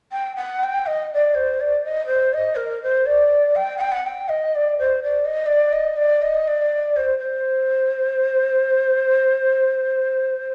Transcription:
0.12 G5
0.36 F#5
0.64 G5
0.86 D#5
1.14 D5
1.35 C5
1.60 D5
1.84 D#5
2.06 C5
2.33 D#5
2.56 A#4
2.83 C5
3.06 D5
3.56 G5
3.78 F#5 G5
3.92 F#5
4.06 G5
4.29 D#5
4.56 D5
4.79 C5
5.03 D5
5.25 D#5
5.46 D5
5.73 D#5
5.97 D5
6.22 D#5
6.48 D5
6.96 C5
7.18 C5

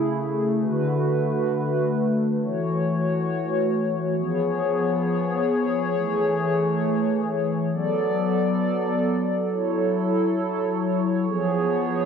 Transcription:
Already playing: C#3 A3 E4 G#4
0.61 D3 F#4 B4
2.39 E3 F#4 C#5
4.16 F3 B3 G#4 C#5
5.94 E3 A3
7.72 F#3 B3 A4 D5
9.50 F#3 E4 A4 C#5
11.28 F3 B3 G#4

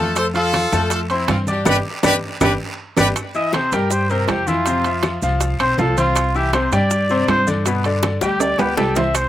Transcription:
Already playing: F2 A3 A4 A5
0.00 F4 A4
0.16 A4 C5, high bongo, high conga, high timbale, long guiro, claves, maracas
0.34 F3 F4 A4 F5, high conga, high timbale, maracas
0.53 high bongo, high conga, high timbale, low timbale, short guiro, claves, maracas
0.72 F2 A3 A4 A5, high conga, short guiro, maracas
0.90 F4 A4, high bongo, high conga, high timbale, long guiro, maracas
1.10 C4 E4 C5 C6, high conga, high timbale, maracas
1.28 G2 C4 F4, high bongo, low bongo, high conga, high timbale, low timbale, short guiro, claves, maracas
1.47 D4 G4 D5 D6, high conga, short guiro, maracas
1.65 G1 D4 G4 B4 D5, high bongo, high conga, high timbale, long guiro, claves, maracas
2.03 G1 D4 G4 B4 D5, high bongo, high conga, high timbale, claves, maracas
2.41 G1 D4 G4 B4 D5, high bongo, high conga, high timbale, claves, maracas
2.97 G1 D4 G4 B4 D5, high bongo, high conga, high timbale, long guiro, claves, maracas
3.16 high bongo, high timbale, long guiro, claves, maracas
3.34 E3 E4 D#5 E5, high bongo, high conga, maracas
3.53 C3 C4 C5, high bongo, high conga, high timbale, low timbale, short guiro, claves, maracas
3.72 G2 G3 G4 A#4 G5, high bongo, high conga, high timbale, short guiro, maracas
3.90 C5, high bongo, high conga, long guiro, maracas
4.09 C3 C4 A#4 C5, high bongo, high conga, maracas
4.28 F2 G4, high bongo, low bongo, high conga, high timbale, low timbale, short guiro, claves, maracas
4.47 E3 E4 F4 E5, high conga, short guiro, maracas
4.66 C3 C4 C5, high bongo, high conga, high timbale, long guiro, maracas
4.84 F3 F4 E5, high bongo, high conga, high timbale, maracas
5.03 high bongo, high conga, high timbale, low timbale, short guiro, claves, maracas
5.22 C2 F3 F4 F5, high bongo, high conga, short guiro, maracas
5.41 high bongo, high conga, high timbale, long guiro, maracas
5.59 B1 C4 C5 C6, high bongo, high conga, high timbale, claves, maracas
5.78 C2 F3 F4 A4 F5, high bongo, low bongo, high conga, low timbale, short guiro, maracas
5.97 C4 F4 C5 C6, high conga, high timbale, short guiro, maracas
6.16 high bongo, high conga, high timbale, long guiro, claves, maracas
6.35 E3 E4 G4 E5, high bongo, high conga, maracas
6.53 C3 C4 C5, high bongo, high conga, high timbale, low timbale, short guiro, claves, maracas
6.72 G2 G3 G4 D5 G5, high bongo, high conga, high timbale, short guiro, maracas
6.91 high bongo, high conga, long guiro, maracas
7.09 C3 C4 C5, high bongo, high conga, maracas
7.28 G2 C5, high bongo, low bongo, high conga, high timbale, low timbale, short guiro, claves, maracas
7.47 D3 D4 D5, high conga, short guiro, maracas
7.66 B2 B3 B4, high bongo, high timbale, long guiro, maracas
7.84 D3 D4 D5, high bongo, high conga, high timbale, maracas
8.03 high bongo, high conga, high timbale, low timbale, short guiro, claves, maracas
8.21 D2 G3 G4 G5, high bongo, high conga, short guiro, maracas
8.40 D5, high conga, high timbale, long guiro, maracas
8.59 D2 B3 G4 B4 B5, low bongo, high conga, low timbale, claves, maracas
8.77 C2 G3 G4 A4 G5, low bongo, high conga, low timbale, short guiro, maracas
8.96 C4 C5 E5 C6, low bongo, high conga, low timbale, short guiro, maracas
9.15 C5, high bongo, high conga, high timbale, long guiro, claves, maracas

